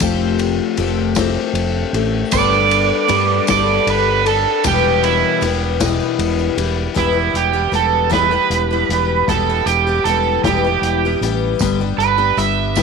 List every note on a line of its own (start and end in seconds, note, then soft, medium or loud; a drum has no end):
0.00 0.59 F1 medium
0.00 0.77 F3 medium
0.00 0.78 A3 medium
0.00 0.78 C4 medium
0.00 0.79 G4 medium
0.00 kick loud
0.00 ride medium
0.00 tambourine medium
0.39 ride medium
0.39 tambourine soft
0.77 1.36 F1 medium
0.77 1.17 F3 medium
0.77 1.17 A3 medium
0.77 1.17 C4 medium
0.77 1.17 G4 medium
0.77 ride medium
1.15 1.95 F3 medium
1.15 1.94 C4 medium
1.15 1.94 G4 medium
1.15 kick medium
1.15 snare loud
1.15 ride loud
1.15 tambourine medium
1.19 1.95 A3 medium
1.53 1.83 F1 medium
1.53 ride medium
1.93 2.22 A1 medium
1.93 2.32 A3 soft
1.93 2.33 C4 soft
1.93 2.33 G4 medium
1.93 ride medium
2.31 2.91 G1 medium
2.31 3.08 G3 medium
2.31 3.08 B3 medium
2.31 3.07 D4 medium
2.31 3.09 A4 medium
2.31 3.46 D5 loud
2.31 kick loud
2.31 ride loud
2.31 tambourine loud
2.70 ride medium
2.70 tambourine soft
3.08 3.39 G2 medium
3.08 3.48 G3 medium
3.08 3.48 B3 medium
3.08 3.48 D4 medium
3.08 3.47 A4 medium
3.08 ride medium
3.47 3.78 G1 medium
3.47 4.29 G3 medium
3.47 4.27 B3 medium
3.47 4.26 D4 medium
3.47 4.25 A4 medium
3.47 3.87 D5 medium
3.47 kick medium
3.47 snare loud
3.47 ride loud
3.47 tambourine loud
3.86 4.45 G1 medium
3.86 4.26 B4 medium
3.86 ride medium
4.26 4.64 B3 soft
4.26 4.65 D4 medium
4.26 4.65 A4 medium
4.26 4.64 A4 medium
4.26 ride medium
4.64 5.23 E1 medium
4.64 5.42 E2 medium
4.64 5.42 B2 medium
4.64 5.41 E3 medium
4.64 5.42 G3 medium
4.64 5.42 B3 medium
4.64 5.42 G4 medium
4.64 5.04 G4 medium
4.64 kick loud
4.64 ride loud
4.64 tambourine loud
5.03 5.41 E4 loud
5.03 ride medium
5.03 tambourine soft
5.41 6.00 E1 medium
5.41 5.80 E3 medium
5.41 5.79 G3 medium
5.41 5.80 B3 medium
5.41 5.79 G4 medium
5.41 ride medium
5.41 tambourine soft
5.80 6.58 E2 medium
5.80 6.58 B2 medium
5.80 6.58 E3 medium
5.80 6.58 G3 medium
5.80 6.57 B3 medium
5.80 6.56 G4 medium
5.80 kick medium
5.80 snare loud
5.80 ride medium
5.80 tambourine loud
6.00 tambourine soft
6.19 6.48 E1 medium
6.19 ride medium
6.39 tambourine soft
6.57 6.86 E1 medium
6.57 6.94 E3 soft
6.57 6.95 G3 soft
6.57 6.94 B3 soft
6.57 6.95 G4 medium
6.57 ride medium
6.94 7.28 E1 medium
6.94 7.15 E2 medium
6.94 7.15 B2 medium
6.94 7.13 E3 medium
6.94 7.13 G3 medium
6.94 7.12 B3 medium
6.94 7.10 G4 medium
6.94 kick medium
6.94 closed hi-hat medium
6.99 7.35 E4 medium
7.12 7.54 E3 soft
7.12 7.53 G3 soft
7.12 7.53 B3 soft
7.12 7.52 G4 medium
7.34 7.66 E1 medium
7.34 7.73 G4 medium
7.34 closed hi-hat medium
7.53 7.71 E3 soft
7.53 7.72 G3 soft
7.53 7.72 B3 soft
7.53 7.73 G4 medium
7.72 8.36 E1 medium
7.72 8.09 E3 medium
7.72 8.10 G3 medium
7.72 8.10 B3 medium
7.72 8.11 G4 medium
7.72 8.12 A4 medium
7.72 closed hi-hat medium
8.10 8.30 E2 medium
8.10 8.31 B2 medium
8.10 8.31 E3 medium
8.10 8.31 G3 medium
8.10 8.31 B3 medium
8.10 8.30 G4 medium
8.10 9.25 B4 medium
8.10 kick medium
8.10 snare medium
8.10 closed hi-hat medium
8.31 8.71 E3 soft
8.31 8.71 G3 soft
8.31 8.71 B3 soft
8.31 8.70 G4 soft
8.50 8.82 E1 medium
8.50 closed hi-hat medium
8.71 8.89 E3 soft
8.71 8.90 G3 soft
8.71 8.90 B3 soft
8.71 8.90 G4 soft
8.89 9.21 E1 medium
8.89 9.28 E3 medium
8.89 9.29 G3 medium
8.89 9.29 B3 medium
8.89 9.29 G4 medium
8.89 closed hi-hat medium
9.28 9.60 E1 medium
9.28 9.48 E2 medium
9.28 9.49 B2 medium
9.28 9.48 E3 medium
9.28 9.49 G3 medium
9.28 9.49 B3 medium
9.28 9.48 G4 medium
9.28 9.67 A4 medium
9.28 kick medium
9.28 closed hi-hat medium
9.49 9.87 E3 soft
9.49 9.87 G3 medium
9.49 9.87 B3 medium
9.49 9.86 G4 medium
9.66 9.98 E1 medium
9.66 10.04 G4 medium
9.66 closed hi-hat medium
9.87 10.06 E3 soft
9.87 10.07 G3 soft
9.87 10.07 B3 soft
9.87 10.06 G4 medium
10.04 10.37 E1 medium
10.04 10.45 E3 medium
10.04 10.45 G3 medium
10.04 10.43 A4 medium
10.04 closed hi-hat medium
10.09 10.46 B3 medium
10.09 10.46 G4 medium
10.43 10.76 E1 medium
10.43 10.64 E2 medium
10.43 10.65 B2 medium
10.43 10.65 E3 medium
10.43 10.65 G3 medium
10.43 11.20 G4 medium
10.43 kick medium
10.43 snare loud
10.43 closed hi-hat medium
10.48 10.63 B3 medium
10.48 10.63 G4 medium
10.65 11.04 E3 soft
10.65 11.04 G3 soft
10.65 11.03 B3 soft
10.65 11.03 G4 soft
10.82 11.14 E1 medium
10.82 closed hi-hat medium
11.05 11.21 E3 soft
11.05 11.21 G3 soft
11.05 11.22 B3 medium
11.05 11.22 G4 soft
11.21 11.53 A1 medium
11.21 11.61 E3 medium
11.21 11.61 G3 medium
11.21 11.60 B3 medium
11.21 11.62 G4 medium
11.21 closed hi-hat medium
11.59 11.92 G1 medium
11.59 11.80 G2 medium
11.59 11.80 D3 medium
11.59 11.80 G3 medium
11.59 11.80 B3 medium
11.59 11.80 D4 medium
11.59 11.79 G4 medium
11.59 kick loud
11.59 closed hi-hat medium
11.59 tambourine medium
11.80 12.18 G3 soft
11.80 12.18 B3 medium
11.80 12.17 D4 medium
11.80 12.17 G4 medium
11.98 12.30 G1 medium
11.98 12.37 B4 loud
11.98 closed hi-hat medium
12.18 12.37 G3 soft
12.18 12.37 B3 soft
12.18 12.38 D4 soft
12.18 12.38 G4 soft
12.37 12.83 G1 medium
12.37 12.76 G3 medium
12.37 12.76 B3 medium
12.37 12.77 D4 medium
12.37 12.78 G4 medium
12.37 12.83 E5 medium
12.37 closed hi-hat medium
12.37 tambourine soft
12.76 12.83 G2 medium
12.76 12.83 D3 medium
12.76 12.83 G3 medium
12.76 12.83 B3 medium
12.76 12.83 D4 medium
12.76 12.83 G4 medium
12.76 kick medium
12.76 snare loud
12.76 closed hi-hat medium
12.76 tambourine medium